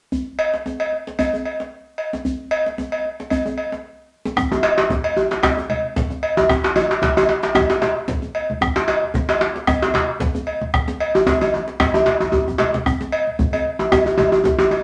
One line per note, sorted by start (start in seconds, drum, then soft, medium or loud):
0.12 djembe bass medium
0.39 cowbell soft
0.54 djembe slap soft
0.66 djembe tone medium
0.80 cowbell soft
0.92 djembe slap soft
1.07 djembe slap soft
1.19 cowbell soft
1.19 djembe bass medium
1.33 djembe tone medium
1.45 cowbell soft
1.60 djembe slap soft
1.98 cowbell soft
2.13 djembe slap soft
2.13 djembe tone soft
2.25 djembe bass medium
2.51 cowbell soft
2.66 djembe slap soft
2.78 djembe tone medium
2.92 cowbell soft
3.05 djembe slap soft
3.20 djembe slap medium
3.30 cowbell soft
3.30 djembe bass medium
3.46 djembe tone medium
3.58 cowbell soft
3.72 djembe slap medium
4.25 djembe slap medium
4.25 djembe tone medium
4.36 bombo rim medium
4.36 bombo low medium
4.36 low conga medium
4.36 djembe bass medium
4.52 djembe slap soft
4.52 djembe tone medium
4.63 cowbell medium
4.63 djembe slap medium
4.78 djembe slap medium
4.78 high conga soft
4.89 bombo low medium
4.89 djembe slap soft
4.89 high conga medium
4.89 low conga medium
4.89 djembe bass medium
5.04 cowbell medium
5.17 djembe tone medium
5.17 high conga soft
5.31 djembe slap medium
5.43 bombo rim loud
5.43 bombo low medium
5.43 cowbell soft
5.43 djembe slap medium
5.43 djembe bass medium
5.43 low conga medium
5.57 djembe tone medium
5.70 cowbell soft
5.70 high conga medium
5.84 high conga soft
5.96 bombo low medium
5.96 djembe slap medium
5.96 djembe bass medium
5.96 low conga medium
6.10 djembe slap soft
6.10 djembe tone soft
6.10 high conga soft
6.23 cowbell soft
6.37 high conga soft
6.37 djembe tone loud
6.49 bombo rim medium
6.49 bombo low medium
6.49 djembe slap medium
6.49 djembe bass medium
6.49 low conga medium
6.64 djembe slap soft
6.64 djembe slap medium
6.64 djembe tone soft
6.76 cowbell soft
6.76 djembe tone medium
6.90 djembe slap medium
6.90 high conga soft
7.02 bombo low medium
7.02 djembe slap soft
7.02 djembe slap medium
7.02 high conga medium
7.02 low conga medium
7.02 djembe bass medium
7.17 cowbell soft
7.17 djembe tone soft
7.17 djembe tone medium
7.29 djembe slap medium
7.29 high conga soft
7.43 djembe slap soft
7.43 djembe slap medium
7.55 bombo rim loud
7.55 bombo low loud
7.55 cowbell soft
7.55 djembe tone loud
7.55 djembe bass medium
7.55 low conga medium
7.69 djembe slap medium
7.69 djembe tone medium
7.82 cowbell soft
7.82 djembe slap medium
7.82 high conga medium
8.08 bombo low loud
8.08 djembe slap medium
8.08 djembe bass medium
8.08 low conga medium
8.22 djembe slap soft
8.22 djembe tone soft
8.22 high conga soft
8.35 cowbell soft
8.50 high conga medium
8.61 bombo rim loud
8.61 bombo low loud
8.61 djembe bass medium
8.61 low conga medium
8.76 djembe slap medium
8.76 djembe slap soft
8.76 djembe tone soft
8.88 cowbell soft
8.88 djembe slap medium
9.03 high conga soft
9.14 bombo low medium
9.14 djembe slap soft
9.14 high conga medium
9.14 djembe bass medium
9.14 low conga medium
9.29 cowbell medium
9.29 djembe slap medium
9.29 djembe tone soft
9.41 djembe slap medium
9.41 high conga soft
9.56 djembe slap medium
9.67 bombo rim medium
9.67 bombo low loud
9.67 cowbell soft
9.67 djembe bass medium
9.67 low conga medium
9.82 djembe slap medium
9.82 djembe tone medium
9.94 cowbell soft
9.94 djembe slap medium
9.94 high conga medium
10.09 high conga soft
10.20 bombo low loud
10.20 djembe slap medium
10.20 djembe bass medium
10.20 low conga medium
10.35 djembe slap soft
10.35 djembe tone medium
10.35 high conga soft
10.47 cowbell soft
10.61 high conga medium
10.74 bombo rim medium
10.74 bombo low loud
10.74 djembe slap soft
10.74 djembe bass medium
10.74 low conga medium
10.88 djembe slap medium
10.88 djembe tone medium
11.00 bombo rim soft
11.00 cowbell soft
11.14 bombo rim soft
11.14 djembe tone medium
11.26 bombo low medium
11.26 djembe slap medium
11.26 high conga medium
11.26 djembe bass medium
11.26 low conga medium
11.41 cowbell soft
11.41 djembe slap soft
11.41 djembe tone medium
11.41 high conga soft
11.41 djembe tone medium
11.53 djembe slap soft
11.53 djembe tone medium
11.53 high conga soft
11.68 djembe slap medium
11.80 bombo rim loud
11.80 bombo low medium
11.80 cowbell soft
11.80 djembe slap medium
11.80 djembe bass medium
11.80 low conga medium
11.94 djembe tone medium
12.06 cowbell soft
12.06 djembe slap medium
12.06 high conga medium
12.20 djembe slap soft
12.20 djembe tone medium
12.20 low conga soft
12.32 bombo low medium
12.32 djembe tone medium
12.32 low conga soft
12.32 djembe bass soft
12.48 bombo rim soft
12.48 djembe bass soft
12.48 low conga medium
12.58 bombo rim soft
12.58 cowbell soft
12.58 djembe slap medium
12.58 djembe slap soft
12.58 high conga medium
12.74 djembe slap medium
12.74 high conga medium
12.86 bombo rim medium
12.86 bombo low medium
12.86 djembe bass medium
12.86 low conga medium
13.01 djembe slap medium
13.01 djembe tone medium
13.12 cowbell soft
13.27 high conga soft
13.39 bombo low medium
13.39 djembe slap soft
13.39 high conga medium
13.39 djembe bass medium
13.39 low conga medium
13.53 cowbell soft
13.53 djembe tone medium
13.66 high conga soft
13.79 djembe slap medium
13.79 djembe tone medium
13.92 bombo rim medium
13.92 bombo low medium
13.92 cowbell soft
13.92 djembe tone medium
13.92 djembe bass medium
13.92 low conga medium
14.06 djembe tone medium
14.18 cowbell soft
14.18 djembe tone medium
14.18 high conga medium
14.32 djembe tone medium
14.32 high conga soft
14.44 bombo low medium
14.44 djembe slap medium
14.44 djembe tone medium
14.44 djembe bass medium
14.44 low conga medium
14.59 djembe slap soft
14.59 djembe tone loud
14.59 djembe tone soft
14.59 high conga soft
14.71 cowbell soft
14.71 djembe tone medium